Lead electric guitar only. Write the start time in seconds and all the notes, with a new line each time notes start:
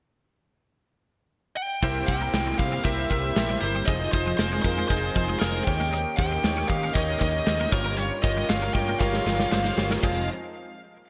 1.57 G5
2.08 G5
2.59 F5
2.85 E5
3.10 E5
3.61 C5
3.86 D#5
4.12 C5
4.38 C5
4.62 C5
4.88 C5
5.40 A#4
5.64 G5
6.17 G5
6.69 F5
6.94 D#5
7.20 D#5
7.72 A#4
7.97 C#5
8.23 D#5
8.49 F5
8.74 G5
9.00 F5
9.51 F5
10.03 F5